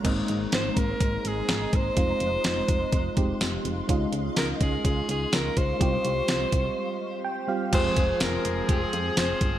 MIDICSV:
0, 0, Header, 1, 7, 480
1, 0, Start_track
1, 0, Key_signature, -4, "minor"
1, 0, Tempo, 480000
1, 48, Time_signature, 4, 2, 24, 8
1, 9587, End_track
2, 0, Start_track
2, 0, Title_t, "Ambient pad"
2, 0, Program_c, 0, 92
2, 51, Note_on_c, 0, 72, 75
2, 52, Note_on_c, 0, 82, 89
2, 54, Note_on_c, 0, 56, 76
2, 55, Note_on_c, 0, 75, 67
2, 1950, Note_off_c, 0, 72, 0
2, 1951, Note_off_c, 0, 82, 0
2, 1952, Note_off_c, 0, 75, 0
2, 1972, Note_on_c, 0, 77, 76
2, 1972, Note_on_c, 0, 84, 86
2, 1975, Note_on_c, 0, 75, 72
2, 3871, Note_off_c, 0, 84, 0
2, 3891, Note_on_c, 0, 85, 86
2, 5771, Note_off_c, 0, 56, 0
2, 5772, Note_off_c, 0, 77, 0
2, 5773, Note_off_c, 0, 75, 0
2, 5790, Note_off_c, 0, 85, 0
2, 5809, Note_on_c, 0, 84, 82
2, 5810, Note_on_c, 0, 77, 71
2, 5811, Note_on_c, 0, 67, 84
2, 5813, Note_on_c, 0, 72, 76
2, 7709, Note_off_c, 0, 84, 0
2, 7710, Note_off_c, 0, 67, 0
2, 7710, Note_off_c, 0, 77, 0
2, 7711, Note_off_c, 0, 72, 0
2, 9587, End_track
3, 0, Start_track
3, 0, Title_t, "Alto saxophone"
3, 0, Program_c, 1, 65
3, 544, Note_on_c, 1, 72, 103
3, 784, Note_on_c, 1, 70, 97
3, 799, Note_off_c, 1, 72, 0
3, 1273, Note_on_c, 1, 68, 93
3, 1288, Note_off_c, 1, 70, 0
3, 1757, Note_on_c, 1, 72, 107
3, 1772, Note_off_c, 1, 68, 0
3, 3662, Note_off_c, 1, 72, 0
3, 4380, Note_on_c, 1, 70, 96
3, 4486, Note_off_c, 1, 70, 0
3, 4623, Note_on_c, 1, 68, 87
3, 4839, Note_off_c, 1, 68, 0
3, 4856, Note_on_c, 1, 68, 89
3, 5076, Note_off_c, 1, 68, 0
3, 5104, Note_on_c, 1, 68, 88
3, 5342, Note_on_c, 1, 70, 96
3, 5357, Note_off_c, 1, 68, 0
3, 5580, Note_on_c, 1, 72, 111
3, 5595, Note_off_c, 1, 70, 0
3, 7254, Note_off_c, 1, 72, 0
3, 7745, Note_on_c, 1, 72, 114
3, 8183, Note_off_c, 1, 72, 0
3, 8214, Note_on_c, 1, 70, 102
3, 8657, Note_off_c, 1, 70, 0
3, 8697, Note_on_c, 1, 68, 87
3, 9139, Note_off_c, 1, 68, 0
3, 9178, Note_on_c, 1, 72, 100
3, 9587, Note_off_c, 1, 72, 0
3, 9587, End_track
4, 0, Start_track
4, 0, Title_t, "FM electric piano"
4, 0, Program_c, 2, 5
4, 0, Control_c, 2, 64, 127
4, 34, Note_on_c, 2, 56, 77
4, 44, Note_on_c, 2, 58, 65
4, 52, Note_on_c, 2, 60, 68
4, 58, Note_on_c, 2, 63, 82
4, 60, Control_c, 2, 64, 0
4, 234, Control_c, 2, 64, 127
4, 1923, Note_off_c, 2, 56, 0
4, 1927, Note_off_c, 2, 58, 0
4, 1932, Note_off_c, 2, 60, 0
4, 1935, Note_off_c, 2, 63, 0
4, 1954, Note_on_c, 2, 56, 63
4, 1963, Note_on_c, 2, 60, 59
4, 1970, Note_on_c, 2, 63, 57
4, 1977, Note_on_c, 2, 65, 73
4, 1983, Control_c, 2, 64, 0
4, 2130, Control_c, 2, 64, 127
4, 3137, Note_off_c, 2, 56, 0
4, 3141, Note_off_c, 2, 60, 0
4, 3145, Note_off_c, 2, 63, 0
4, 3148, Note_off_c, 2, 65, 0
4, 3169, Note_on_c, 2, 56, 59
4, 3172, Note_on_c, 2, 60, 54
4, 3176, Note_on_c, 2, 63, 53
4, 3178, Note_on_c, 2, 67, 67
4, 3866, Note_off_c, 2, 56, 0
4, 3878, Note_on_c, 2, 56, 76
4, 3882, Note_off_c, 2, 63, 0
4, 3888, Note_on_c, 2, 61, 72
4, 3890, Note_off_c, 2, 60, 0
4, 3893, Note_off_c, 2, 67, 0
4, 3894, Note_on_c, 2, 63, 74
4, 3900, Control_c, 2, 64, 0
4, 3902, Note_on_c, 2, 65, 93
4, 4076, Control_c, 2, 64, 127
4, 5764, Note_off_c, 2, 56, 0
4, 5770, Note_off_c, 2, 61, 0
4, 5773, Note_off_c, 2, 63, 0
4, 5777, Note_off_c, 2, 65, 0
4, 5796, Note_on_c, 2, 55, 65
4, 5805, Note_on_c, 2, 60, 62
4, 5812, Note_on_c, 2, 65, 63
4, 5821, Note_on_c, 2, 67, 78
4, 5823, Control_c, 2, 64, 0
4, 6025, Control_c, 2, 64, 127
4, 7245, Note_on_c, 2, 79, 78
4, 7448, Note_off_c, 2, 55, 0
4, 7453, Note_off_c, 2, 60, 0
4, 7457, Note_off_c, 2, 65, 0
4, 7461, Note_off_c, 2, 67, 0
4, 7470, Note_off_c, 2, 79, 0
4, 7475, Note_on_c, 2, 55, 64
4, 7481, Note_on_c, 2, 60, 59
4, 7484, Note_on_c, 2, 77, 75
4, 7487, Note_on_c, 2, 65, 53
4, 7488, Note_on_c, 2, 67, 71
4, 7709, Note_off_c, 2, 77, 0
4, 7714, Note_off_c, 2, 60, 0
4, 7715, Note_on_c, 2, 53, 67
4, 7718, Note_on_c, 2, 56, 60
4, 7720, Note_off_c, 2, 65, 0
4, 7721, Note_off_c, 2, 55, 0
4, 7726, Note_on_c, 2, 60, 61
4, 7728, Note_off_c, 2, 67, 0
4, 7732, Note_on_c, 2, 65, 61
4, 7739, Note_on_c, 2, 68, 73
4, 7741, Control_c, 2, 64, 0
4, 7938, Control_c, 2, 64, 127
4, 9587, Note_off_c, 2, 53, 0
4, 9587, Note_off_c, 2, 56, 0
4, 9587, Note_off_c, 2, 60, 0
4, 9587, Note_off_c, 2, 65, 0
4, 9587, Note_off_c, 2, 68, 0
4, 9587, End_track
5, 0, Start_track
5, 0, Title_t, "Horn section"
5, 0, Program_c, 3, 61
5, 7727, Note_on_c, 3, 53, 88
5, 7727, Note_on_c, 3, 60, 87
5, 7728, Note_on_c, 3, 68, 91
5, 9587, Note_off_c, 3, 53, 0
5, 9587, Note_off_c, 3, 60, 0
5, 9587, Note_off_c, 3, 68, 0
5, 9587, End_track
6, 0, Start_track
6, 0, Title_t, "FM bass"
6, 0, Program_c, 4, 39
6, 48, Note_on_c, 4, 32, 110
6, 220, Note_off_c, 4, 32, 0
6, 294, Note_on_c, 4, 32, 90
6, 464, Note_off_c, 4, 32, 0
6, 534, Note_on_c, 4, 32, 101
6, 705, Note_off_c, 4, 32, 0
6, 766, Note_on_c, 4, 32, 101
6, 940, Note_off_c, 4, 32, 0
6, 1007, Note_on_c, 4, 32, 95
6, 1180, Note_off_c, 4, 32, 0
6, 1250, Note_on_c, 4, 32, 84
6, 1422, Note_off_c, 4, 32, 0
6, 1491, Note_on_c, 4, 32, 99
6, 1663, Note_off_c, 4, 32, 0
6, 1732, Note_on_c, 4, 32, 97
6, 1903, Note_off_c, 4, 32, 0
6, 1967, Note_on_c, 4, 29, 108
6, 2140, Note_off_c, 4, 29, 0
6, 2208, Note_on_c, 4, 29, 98
6, 2380, Note_off_c, 4, 29, 0
6, 2450, Note_on_c, 4, 29, 100
6, 2622, Note_off_c, 4, 29, 0
6, 2685, Note_on_c, 4, 29, 98
6, 2859, Note_off_c, 4, 29, 0
6, 2928, Note_on_c, 4, 29, 109
6, 3101, Note_off_c, 4, 29, 0
6, 3170, Note_on_c, 4, 29, 87
6, 3342, Note_off_c, 4, 29, 0
6, 3411, Note_on_c, 4, 29, 102
6, 3583, Note_off_c, 4, 29, 0
6, 3646, Note_on_c, 4, 29, 100
6, 3819, Note_off_c, 4, 29, 0
6, 3892, Note_on_c, 4, 37, 105
6, 4064, Note_off_c, 4, 37, 0
6, 4124, Note_on_c, 4, 37, 93
6, 4298, Note_off_c, 4, 37, 0
6, 4364, Note_on_c, 4, 37, 96
6, 4538, Note_off_c, 4, 37, 0
6, 4605, Note_on_c, 4, 37, 94
6, 4779, Note_off_c, 4, 37, 0
6, 4847, Note_on_c, 4, 37, 97
6, 5020, Note_off_c, 4, 37, 0
6, 5090, Note_on_c, 4, 37, 95
6, 5262, Note_off_c, 4, 37, 0
6, 5332, Note_on_c, 4, 37, 101
6, 5503, Note_off_c, 4, 37, 0
6, 5570, Note_on_c, 4, 37, 96
6, 5742, Note_off_c, 4, 37, 0
6, 5810, Note_on_c, 4, 36, 109
6, 5982, Note_off_c, 4, 36, 0
6, 6047, Note_on_c, 4, 36, 98
6, 6220, Note_off_c, 4, 36, 0
6, 6286, Note_on_c, 4, 36, 95
6, 6460, Note_off_c, 4, 36, 0
6, 6525, Note_on_c, 4, 36, 98
6, 6699, Note_off_c, 4, 36, 0
6, 7727, Note_on_c, 4, 29, 103
6, 7900, Note_off_c, 4, 29, 0
6, 7966, Note_on_c, 4, 29, 93
6, 8139, Note_off_c, 4, 29, 0
6, 8209, Note_on_c, 4, 29, 115
6, 8381, Note_off_c, 4, 29, 0
6, 8449, Note_on_c, 4, 29, 98
6, 8622, Note_off_c, 4, 29, 0
6, 8690, Note_on_c, 4, 29, 98
6, 8862, Note_off_c, 4, 29, 0
6, 8934, Note_on_c, 4, 41, 96
6, 9105, Note_off_c, 4, 41, 0
6, 9170, Note_on_c, 4, 29, 99
6, 9342, Note_off_c, 4, 29, 0
6, 9412, Note_on_c, 4, 31, 95
6, 9583, Note_off_c, 4, 31, 0
6, 9587, End_track
7, 0, Start_track
7, 0, Title_t, "Drums"
7, 46, Note_on_c, 9, 42, 97
7, 46, Note_on_c, 9, 49, 92
7, 48, Note_on_c, 9, 36, 98
7, 146, Note_off_c, 9, 42, 0
7, 146, Note_off_c, 9, 49, 0
7, 148, Note_off_c, 9, 36, 0
7, 283, Note_on_c, 9, 42, 62
7, 383, Note_off_c, 9, 42, 0
7, 522, Note_on_c, 9, 42, 79
7, 527, Note_on_c, 9, 38, 111
7, 622, Note_off_c, 9, 42, 0
7, 627, Note_off_c, 9, 38, 0
7, 765, Note_on_c, 9, 36, 91
7, 767, Note_on_c, 9, 42, 78
7, 865, Note_off_c, 9, 36, 0
7, 867, Note_off_c, 9, 42, 0
7, 1005, Note_on_c, 9, 36, 88
7, 1005, Note_on_c, 9, 42, 91
7, 1105, Note_off_c, 9, 36, 0
7, 1105, Note_off_c, 9, 42, 0
7, 1248, Note_on_c, 9, 42, 68
7, 1348, Note_off_c, 9, 42, 0
7, 1486, Note_on_c, 9, 42, 74
7, 1488, Note_on_c, 9, 38, 103
7, 1586, Note_off_c, 9, 42, 0
7, 1588, Note_off_c, 9, 38, 0
7, 1729, Note_on_c, 9, 42, 68
7, 1730, Note_on_c, 9, 36, 95
7, 1829, Note_off_c, 9, 42, 0
7, 1830, Note_off_c, 9, 36, 0
7, 1966, Note_on_c, 9, 42, 99
7, 1968, Note_on_c, 9, 36, 105
7, 2066, Note_off_c, 9, 42, 0
7, 2068, Note_off_c, 9, 36, 0
7, 2203, Note_on_c, 9, 42, 67
7, 2303, Note_off_c, 9, 42, 0
7, 2442, Note_on_c, 9, 42, 86
7, 2443, Note_on_c, 9, 54, 56
7, 2447, Note_on_c, 9, 38, 112
7, 2542, Note_off_c, 9, 42, 0
7, 2543, Note_off_c, 9, 54, 0
7, 2547, Note_off_c, 9, 38, 0
7, 2684, Note_on_c, 9, 42, 78
7, 2685, Note_on_c, 9, 36, 93
7, 2784, Note_off_c, 9, 42, 0
7, 2785, Note_off_c, 9, 36, 0
7, 2924, Note_on_c, 9, 42, 91
7, 2926, Note_on_c, 9, 36, 89
7, 3024, Note_off_c, 9, 42, 0
7, 3026, Note_off_c, 9, 36, 0
7, 3168, Note_on_c, 9, 42, 72
7, 3170, Note_on_c, 9, 36, 86
7, 3268, Note_off_c, 9, 42, 0
7, 3270, Note_off_c, 9, 36, 0
7, 3407, Note_on_c, 9, 54, 65
7, 3408, Note_on_c, 9, 42, 76
7, 3410, Note_on_c, 9, 38, 106
7, 3507, Note_off_c, 9, 54, 0
7, 3508, Note_off_c, 9, 42, 0
7, 3510, Note_off_c, 9, 38, 0
7, 3651, Note_on_c, 9, 42, 65
7, 3751, Note_off_c, 9, 42, 0
7, 3890, Note_on_c, 9, 36, 102
7, 3891, Note_on_c, 9, 42, 96
7, 3990, Note_off_c, 9, 36, 0
7, 3991, Note_off_c, 9, 42, 0
7, 4126, Note_on_c, 9, 42, 66
7, 4226, Note_off_c, 9, 42, 0
7, 4364, Note_on_c, 9, 42, 86
7, 4365, Note_on_c, 9, 54, 61
7, 4368, Note_on_c, 9, 38, 112
7, 4464, Note_off_c, 9, 42, 0
7, 4465, Note_off_c, 9, 54, 0
7, 4468, Note_off_c, 9, 38, 0
7, 4606, Note_on_c, 9, 36, 92
7, 4606, Note_on_c, 9, 42, 82
7, 4706, Note_off_c, 9, 36, 0
7, 4706, Note_off_c, 9, 42, 0
7, 4846, Note_on_c, 9, 36, 93
7, 4848, Note_on_c, 9, 42, 92
7, 4946, Note_off_c, 9, 36, 0
7, 4948, Note_off_c, 9, 42, 0
7, 5089, Note_on_c, 9, 42, 69
7, 5189, Note_off_c, 9, 42, 0
7, 5325, Note_on_c, 9, 54, 62
7, 5327, Note_on_c, 9, 42, 80
7, 5328, Note_on_c, 9, 38, 106
7, 5425, Note_off_c, 9, 54, 0
7, 5427, Note_off_c, 9, 42, 0
7, 5428, Note_off_c, 9, 38, 0
7, 5567, Note_on_c, 9, 42, 71
7, 5568, Note_on_c, 9, 36, 91
7, 5667, Note_off_c, 9, 42, 0
7, 5668, Note_off_c, 9, 36, 0
7, 5807, Note_on_c, 9, 36, 105
7, 5809, Note_on_c, 9, 42, 94
7, 5907, Note_off_c, 9, 36, 0
7, 5909, Note_off_c, 9, 42, 0
7, 6046, Note_on_c, 9, 42, 66
7, 6145, Note_off_c, 9, 42, 0
7, 6282, Note_on_c, 9, 42, 86
7, 6283, Note_on_c, 9, 54, 58
7, 6286, Note_on_c, 9, 38, 115
7, 6382, Note_off_c, 9, 42, 0
7, 6383, Note_off_c, 9, 54, 0
7, 6386, Note_off_c, 9, 38, 0
7, 6524, Note_on_c, 9, 36, 95
7, 6524, Note_on_c, 9, 42, 83
7, 6624, Note_off_c, 9, 36, 0
7, 6624, Note_off_c, 9, 42, 0
7, 7727, Note_on_c, 9, 42, 97
7, 7727, Note_on_c, 9, 49, 102
7, 7728, Note_on_c, 9, 36, 105
7, 7827, Note_off_c, 9, 42, 0
7, 7827, Note_off_c, 9, 49, 0
7, 7828, Note_off_c, 9, 36, 0
7, 7965, Note_on_c, 9, 42, 73
7, 7967, Note_on_c, 9, 36, 85
7, 8065, Note_off_c, 9, 42, 0
7, 8067, Note_off_c, 9, 36, 0
7, 8204, Note_on_c, 9, 42, 81
7, 8205, Note_on_c, 9, 54, 60
7, 8208, Note_on_c, 9, 38, 120
7, 8304, Note_off_c, 9, 42, 0
7, 8305, Note_off_c, 9, 54, 0
7, 8308, Note_off_c, 9, 38, 0
7, 8449, Note_on_c, 9, 42, 82
7, 8549, Note_off_c, 9, 42, 0
7, 8687, Note_on_c, 9, 36, 96
7, 8689, Note_on_c, 9, 42, 89
7, 8787, Note_off_c, 9, 36, 0
7, 8789, Note_off_c, 9, 42, 0
7, 8930, Note_on_c, 9, 42, 68
7, 9030, Note_off_c, 9, 42, 0
7, 9169, Note_on_c, 9, 54, 68
7, 9170, Note_on_c, 9, 42, 82
7, 9172, Note_on_c, 9, 38, 101
7, 9269, Note_off_c, 9, 54, 0
7, 9270, Note_off_c, 9, 42, 0
7, 9272, Note_off_c, 9, 38, 0
7, 9409, Note_on_c, 9, 42, 69
7, 9411, Note_on_c, 9, 36, 100
7, 9509, Note_off_c, 9, 42, 0
7, 9511, Note_off_c, 9, 36, 0
7, 9587, End_track
0, 0, End_of_file